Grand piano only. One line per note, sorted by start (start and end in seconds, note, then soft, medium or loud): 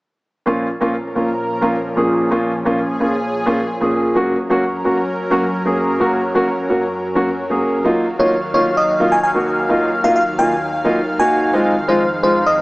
0.46 0.66 A#2 medium
0.46 0.66 F3 medium
0.46 0.66 A#3 medium
0.46 0.66 C#4 medium
0.46 0.66 F4 medium
0.81 0.93 A#2 medium
0.81 0.93 F3 medium
0.81 0.93 A#3 medium
0.81 0.93 C#4 medium
0.81 0.94 F4 medium
1.15 1.28 A#2 medium
1.15 1.28 F3 medium
1.15 1.28 A#3 medium
1.15 1.28 C#4 medium
1.15 1.28 F4 medium
1.61 1.74 A#2 medium
1.61 1.74 F3 medium
1.61 1.74 A#3 medium
1.61 1.74 C#4 medium
1.61 1.74 F4 medium
1.96 2.28 A#2 medium
1.96 2.28 F3 medium
1.96 2.28 A#3 medium
1.96 2.28 C#4 medium
1.96 2.29 G#4 medium
2.31 2.50 A#2 medium
2.31 2.50 F3 medium
2.31 2.51 A#3 medium
2.31 2.51 C#4 medium
2.31 2.51 F4 medium
2.65 2.78 A#2 medium
2.65 2.78 F3 medium
2.65 2.78 A#3 medium
2.65 2.78 C#4 medium
2.65 2.78 F4 medium
3.00 3.12 A#2 medium
3.00 3.12 F3 medium
3.00 3.12 A#3 medium
3.00 3.13 C#4 medium
3.00 3.13 F4 medium
3.46 3.58 A#2 medium
3.46 3.58 F3 medium
3.46 3.59 A#3 medium
3.46 3.59 C#4 medium
3.46 3.59 F4 medium
3.80 4.13 A#2 medium
3.80 4.13 F3 medium
3.80 4.13 A#3 medium
3.80 4.13 C#4 medium
3.80 4.13 G#4 medium
4.15 4.35 F#3 medium
4.15 4.35 A#3 medium
4.15 4.35 C#4 medium
4.15 4.35 F#4 medium
4.50 4.62 F#3 medium
4.50 4.62 A#3 medium
4.50 4.63 C#4 medium
4.50 4.63 F#4 loud
4.84 4.97 F#3 medium
4.84 4.97 A#3 medium
4.84 4.97 C#4 medium
4.84 4.97 F#4 medium
5.30 5.43 F#3 medium
5.30 5.43 A#3 medium
5.30 5.43 C#4 medium
5.30 5.44 F#4 medium
5.65 5.97 F#3 medium
5.65 5.97 A#3 medium
5.65 5.98 C#4 medium
5.65 5.98 G#4 medium
6.00 6.19 F#3 medium
6.00 6.20 A#3 medium
6.00 6.20 C#4 medium
6.00 6.20 F#4 medium
6.34 6.47 F#3 medium
6.34 6.47 A#3 medium
6.34 6.47 C#4 medium
6.34 6.47 F#4 medium
6.69 6.81 F#3 medium
6.69 6.82 A#3 medium
6.69 6.82 C#4 medium
6.69 6.82 F#4 medium
7.15 7.28 F#3 medium
7.15 7.28 A#3 medium
7.15 7.28 C#4 medium
7.15 7.28 F#4 medium
7.50 7.82 F#3 medium
7.50 7.82 A#3 medium
7.50 7.82 C#4 medium
7.50 7.82 G#4 medium
7.84 8.04 F#3 medium
7.84 8.04 A#3 medium
7.84 8.04 D#4 medium
7.84 8.05 F4 medium
8.19 8.31 F#3 medium
8.19 8.32 A#3 medium
8.19 8.32 D#4 medium
8.19 8.32 F4 medium
8.54 8.66 F#3 medium
8.54 8.66 A#3 medium
8.54 8.66 D#4 medium
8.54 8.67 F4 medium
9.00 9.12 F#3 medium
9.00 9.12 A#3 medium
9.00 9.13 D#4 medium
9.00 9.13 F4 medium
9.34 9.67 F#3 medium
9.34 9.67 A#3 medium
9.34 9.67 D#4 medium
9.34 9.67 F#4 medium
9.69 9.89 F#3 medium
9.69 9.89 A#3 medium
9.69 9.89 D#4 medium
9.69 9.89 F4 medium
10.04 10.16 F#3 medium
10.04 10.16 A#3 medium
10.04 10.16 D#4 medium
10.04 10.17 F4 medium
10.38 10.51 F#3 medium
10.38 10.51 A#3 medium
10.38 10.51 D#4 medium
10.38 10.51 F4 medium
10.84 10.97 F#3 medium
10.84 10.97 A#3 medium
10.84 10.97 D#4 medium
10.84 10.97 F4 medium
11.19 11.51 F#3 medium
11.19 11.51 A#3 medium
11.19 11.51 D#4 medium
11.19 11.52 F#4 medium
11.53 11.73 G#3 medium
11.53 11.73 C4 medium
11.53 11.74 D#4 medium
11.53 11.74 F4 medium
11.88 12.01 G#3 medium
11.88 12.01 C4 medium
11.88 12.01 D#4 medium
11.88 12.01 F4 loud
12.23 12.35 G#3 medium
12.23 12.35 C4 medium
12.23 12.36 D#4 medium
12.23 12.36 F4 medium